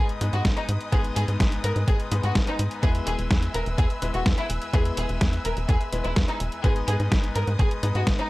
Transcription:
Already playing: grand piano G#2 G#3 B3 D#4 B4, string section B4 D#5 G#5 D#6
0.09 closed hi-hat
0.21 grand piano G#2 G#3 B3 D#4 B4, analog synth bass G#2, closed hi-hat
0.33 analog synth bass G#2, violin section F#4, closed hi-hat
0.45 analog synth bass G#1, kick, snare, closed hi-hat
0.57 violin section D#4, closed hi-hat
0.69 analog synth bass G#2, closed hi-hat
0.81 closed hi-hat
0.92 analog synth bass G#1, grand piano G#2 G#3 B3 D#4 B4, violin section G#4, kick, closed hi-hat
1.04 closed hi-hat
1.16 analog synth bass G#2, violin section G#4, closed hi-hat
1.28 analog synth bass G#2, closed hi-hat
1.40 analog synth bass G#1, kick, snare, closed hi-hat
1.52 closed hi-hat
1.64 analog synth bass G#2, violin section A#4, closed hi-hat
1.76 analog synth bass G#2, closed hi-hat
1.88 analog synth bass G#1, violin section G#4, kick, closed hi-hat
2.00 closed hi-hat
2.12 analog synth bass G#2, grand piano G#2 G#3 B3 D#4 B4, closed hi-hat
2.23 analog synth bass G#2, violin section F#4, closed hi-hat
2.35 analog synth bass G#1, kick, snare, closed hi-hat
2.47 violin section D#4, closed hi-hat
2.59 analog synth bass G#2, closed hi-hat
2.71 closed hi-hat
2.83 analog synth bass E2, grand piano G#3 B3 E4 B4, violin section G#4, string section E5 E6, kick, closed hi-hat
2.95 closed hi-hat
3.07 analog synth bass E1, violin section G#4, closed hi-hat
3.19 analog synth bass E1, closed hi-hat
3.31 analog synth bass E2, kick, snare, closed hi-hat
3.43 closed hi-hat
3.54 analog synth bass E1, violin section A#4, closed hi-hat
3.66 analog synth bass E1, closed hi-hat
3.78 analog synth bass E2, violin section G#4, kick, closed hi-hat
3.90 closed hi-hat
4.02 analog synth bass E1, grand piano G#3 B3 E4 B4, closed hi-hat
4.14 analog synth bass E1, violin section F#4, closed hi-hat
4.26 analog synth bass E2, kick, snare, closed hi-hat
4.38 violin section E4, closed hi-hat
4.50 analog synth bass E1, closed hi-hat
4.62 closed hi-hat
4.73 analog synth bass E2, grand piano G#3 B3 E4 B4, violin section G#4, kick, closed hi-hat
4.85 closed hi-hat
4.97 analog synth bass E1, violin section G#4, closed hi-hat
5.09 analog synth bass E1, closed hi-hat
5.21 analog synth bass E2, kick, snare, closed hi-hat
5.33 closed hi-hat
5.45 analog synth bass E1, violin section A#4, closed hi-hat
5.57 analog synth bass E1, closed hi-hat
5.69 analog synth bass E2, violin section G#4, kick, closed hi-hat
5.81 closed hi-hat
5.93 analog synth bass E1, grand piano G#3 B3 E4 B4, closed hi-hat
6.04 analog synth bass E1, violin section E4, closed hi-hat
6.16 analog synth bass E2, kick, snare, closed hi-hat
6.28 violin section D#4, closed hi-hat
6.40 analog synth bass E1, closed hi-hat
6.52 closed hi-hat
6.64 analog synth bass G#1, grand piano G#2 G#3 B3 D#4 B4, violin section G#4, string section D#5 D#6, kick, closed hi-hat
6.76 closed hi-hat
6.88 analog synth bass G#2, violin section G#4, closed hi-hat
7.00 analog synth bass G#2, closed hi-hat
7.12 analog synth bass G#1, kick, snare, closed hi-hat
7.24 closed hi-hat
7.35 analog synth bass G#2, violin section A#4, closed hi-hat
7.47 analog synth bass G#2, closed hi-hat
7.59 analog synth bass G#1, violin section G#4, kick, closed hi-hat
7.71 closed hi-hat
7.83 grand piano G#2 G#3 B3 D#4 B4, analog synth bass G#2, closed hi-hat
7.95 analog synth bass G#2, violin section F#4, closed hi-hat
8.07 analog synth bass G#1, kick, snare, closed hi-hat
8.19 violin section D#4, closed hi-hat

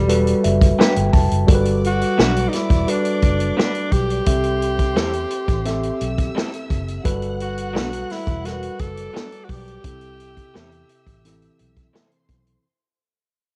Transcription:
Already playing: fingered electric bass E1, tine electric piano G3 F#4 A4 B4, tenor saxophone G3
0.08 tine electric piano G3 F#4 A4 B4, closed hi-hat
0.27 closed hi-hat
0.44 fingered electric bass F#1, tine electric piano E5, closed hi-hat
0.61 kick, closed hi-hat
0.79 clean electric guitar A3 D4 F#4 B4, tine electric piano G5, snare
0.96 fingered electric bass G1, closed hi-hat
1.13 fingered electric bass F1, tine electric piano A5, kick, open hi-hat
1.31 fingered electric bass F#1, closed hi-hat
1.47 fingered electric bass G1, tine electric piano G3 F#4 A4 A#4, string section D5 D6, kick, closed hi-hat
1.55 tine electric piano B4
1.65 closed hi-hat
1.84 tenor saxophone F#4, closed hi-hat
2.01 closed hi-hat
2.18 fingered electric bass B1, clean electric guitar A3 D4 F#4 B4, snare
2.36 closed hi-hat
2.49 tenor saxophone D#4
2.53 tenor saxophone E4, snare, closed hi-hat
2.70 fingered electric bass E1, kick, closed hi-hat
2.87 tine electric piano G3 F#4 A4 B4, tenor saxophone D4, closed hi-hat
3.05 closed hi-hat
3.22 fingered electric bass F#1, kick, closed hi-hat
3.40 closed hi-hat
3.57 clean electric guitar A3 D4 F#4 B4, tenor saxophone D4, snare
3.75 closed hi-hat
3.92 fingered electric bass B1, tenor saxophone G4, kick, closed hi-hat
4.10 closed hi-hat
4.26 fingered electric bass C2, tine electric piano C4 G4 A4 E5, string section C5 C6, kick, closed hi-hat
4.44 closed hi-hat
4.62 closed hi-hat
4.79 kick, closed hi-hat
4.96 fingered electric bass E2, clean electric guitar G3 C4 E4 A4, snare
5.13 closed hi-hat
5.31 closed hi-hat
5.48 fingered electric bass A1, kick, closed hi-hat
5.65 tine electric piano C4 G4 A4 E5, snare, closed hi-hat
5.83 closed hi-hat
6.01 fingered electric bass B1, string section E5 E6, closed hi-hat
6.18 kick, closed hi-hat
6.35 clean electric guitar G3 C4 E4 A4, snare
6.53 closed hi-hat
6.70 fingered electric bass F#1, kick, closed hi-hat
6.88 closed hi-hat
7.04 fingered electric bass G1, tine electric piano G3 F#4 A4 B4, string section F#5 F#6, kick, closed hi-hat
7.22 closed hi-hat
7.40 tenor saxophone F#4, closed hi-hat
7.58 closed hi-hat
7.73 fingered electric bass B1, clean electric guitar F#3 B3 D4 A4, snare
7.93 closed hi-hat
8.10 tenor saxophone E4, snare, open hi-hat
8.27 fingered electric bass E1, kick, closed hi-hat
8.44 tine electric piano G3 F#4 A4 A#4, tenor saxophone F#4, snare, closed hi-hat
8.52 tine electric piano B4
8.63 closed hi-hat
8.78 fingered electric bass F#1, tenor saxophone A4, string section D5 D6, kick, closed hi-hat
8.97 closed hi-hat
9.13 clean electric guitar F#3 B3 D4 A4, snare
9.32 closed hi-hat
9.45 tenor saxophone F#4
9.49 fingered electric bass B1, tenor saxophone G4, kick, open hi-hat
9.68 closed hi-hat
9.84 fingered electric bass C2, tine electric piano C3 C4 E4 A4, string section E5 E6, kick, closed hi-hat
10.01 closed hi-hat
10.20 closed hi-hat
10.37 kick, closed hi-hat
10.54 fingered electric bass E2, clean electric guitar G3 C4 E4 A4, snare
10.72 closed hi-hat
10.89 closed hi-hat
11.07 fingered electric bass A1, kick, closed hi-hat
11.24 tine electric piano E3 C4 E4 A4, snare, closed hi-hat
11.42 closed hi-hat
11.59 fingered electric bass B1, closed hi-hat
11.77 kick, closed hi-hat
11.93 clean electric guitar G3 C4 E4 A4, string section C5 C6, snare
12.12 closed hi-hat
12.29 fingered electric bass B1, kick, closed hi-hat
12.47 closed hi-hat

